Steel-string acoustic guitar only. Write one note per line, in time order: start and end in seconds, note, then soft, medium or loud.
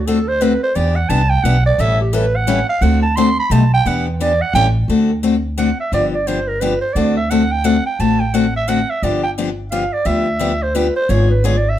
0.07 0.18 D3 medium
0.07 0.18 A3 medium
0.07 0.18 C4 medium
0.07 0.18 F#4 medium
0.07 0.18 A4 loud
0.41 0.52 D3 medium
0.41 0.52 A3 medium
0.41 0.52 C4 medium
0.41 0.52 F#4 medium
0.41 0.52 A4 medium
0.75 0.96 E3 medium
0.75 0.96 B3 medium
0.75 0.96 D4 medium
0.75 0.97 G4 medium
1.10 1.21 E3 medium
1.10 1.21 B3 medium
1.10 1.21 D4 medium
1.10 1.21 G4 medium
1.45 1.56 E3 medium
1.45 1.56 B3 loud
1.45 1.56 D4 loud
1.45 1.56 G4 medium
1.79 1.99 E3 medium
1.79 2.00 G3 medium
1.79 2.00 C#4 medium
1.79 2.00 E4 medium
1.79 2.00 A4 medium
2.13 2.24 E3 medium
2.13 2.24 G3 medium
2.13 2.24 C#4 medium
2.13 2.25 E4 medium
2.13 2.25 A4 loud
2.47 2.58 E3 medium
2.47 2.59 G3 loud
2.47 2.59 C#4 loud
2.47 2.59 E4 loud
2.47 2.59 A4 medium
2.81 3.03 D3 medium
2.81 3.03 A3 medium
2.81 3.03 C4 medium
2.81 3.03 F#4 medium
2.81 3.03 A4 medium
3.17 3.28 D3 medium
3.17 3.28 A3 medium
3.17 3.28 C4 medium
3.17 3.28 F#4 medium
3.17 3.28 A4 loud
3.51 3.62 B2 loud
3.51 3.62 G3 medium
3.51 3.62 A3 medium
3.51 3.63 D#4 medium
3.51 3.63 G4 loud
3.86 4.06 E3 medium
3.86 4.07 B3 medium
3.86 4.07 D4 medium
3.86 4.07 G4 medium
4.20 4.31 E3 medium
4.20 4.31 B3 medium
4.20 4.32 D4 medium
4.20 4.32 G4 loud
4.55 4.66 E3 medium
4.55 4.66 G3 medium
4.55 4.66 C#4 medium
4.55 4.66 E4 loud
4.55 4.66 A4 loud
4.89 5.10 D3 medium
4.89 5.10 A3 medium
4.89 5.10 C4 medium
4.89 5.10 F#4 medium
4.89 5.10 A4 medium
5.23 5.34 D3 medium
5.23 5.34 A3 medium
5.23 5.34 C4 medium
5.23 5.35 F#4 medium
5.23 5.35 A4 medium
5.58 5.69 D3 medium
5.58 5.69 A3 medium
5.58 5.69 C4 medium
5.58 5.69 F#4 medium
5.58 5.69 A4 medium
5.93 6.13 D3 medium
5.93 6.14 F3 medium
5.93 6.14 B3 medium
5.93 6.14 D4 medium
5.93 6.14 G4 medium
6.27 6.38 D3 medium
6.27 6.38 F3 medium
6.27 6.38 B3 medium
6.27 6.39 D4 medium
6.27 6.39 G4 medium
6.61 6.72 D3 medium
6.61 6.73 F3 medium
6.61 6.73 B3 medium
6.61 6.73 D4 medium
6.61 6.73 G4 medium
6.96 7.17 D3 medium
6.96 7.17 A3 medium
6.96 7.17 C4 medium
6.96 7.17 F#4 medium
6.96 7.17 A4 medium
7.31 7.42 D3 medium
7.31 7.42 A3 medium
7.31 7.42 C4 medium
7.31 7.42 F#4 medium
7.31 7.42 A4 medium
7.64 7.76 D3 medium
7.64 7.76 A3 medium
7.64 7.76 C4 medium
7.64 7.76 F#4 medium
7.64 7.76 A4 medium
8.00 8.20 D3 medium
8.00 8.20 A3 medium
8.00 8.21 C4 medium
8.00 8.21 F#4 medium
8.00 8.21 A4 medium
8.34 8.45 D3 medium
8.34 8.45 A3 medium
8.34 8.45 C4 medium
8.34 8.45 F#4 medium
8.34 8.45 A4 medium
8.68 8.79 D3 medium
8.68 8.79 A3 medium
8.68 8.79 C4 medium
8.68 8.79 F#4 medium
8.68 8.79 A4 loud
9.03 9.24 D3 medium
9.03 9.24 F3 medium
9.03 9.24 B3 medium
9.03 9.24 D4 medium
9.03 9.24 G4 medium
9.38 9.48 D3 medium
9.38 9.49 F3 medium
9.38 9.49 B3 medium
9.38 9.49 D4 medium
9.38 9.49 G4 medium
9.72 9.83 D3 medium
9.72 9.83 F3 medium
9.72 9.83 B3 medium
9.72 9.83 D4 medium
9.72 9.83 G4 loud
10.05 10.26 D3 medium
10.05 10.27 F3 medium
10.05 10.27 B3 medium
10.05 10.27 D4 medium
10.05 10.27 G4 medium
10.39 10.51 D3 medium
10.39 10.51 F3 medium
10.39 10.51 B3 medium
10.39 10.52 D4 loud
10.39 10.52 G4 medium
10.75 10.86 D3 medium
10.75 10.86 F3 medium
10.75 10.86 B3 medium
10.75 10.86 D4 medium
10.75 10.87 G4 medium
11.09 11.30 D3 medium
11.09 11.30 G#3 medium
11.09 11.30 B3 medium
11.09 11.30 F4 medium
11.09 11.31 G#4 medium
11.44 11.55 D3 medium
11.44 11.55 G#3 medium
11.44 11.55 B3 medium
11.44 11.56 F4 medium
11.44 11.55 G#4 medium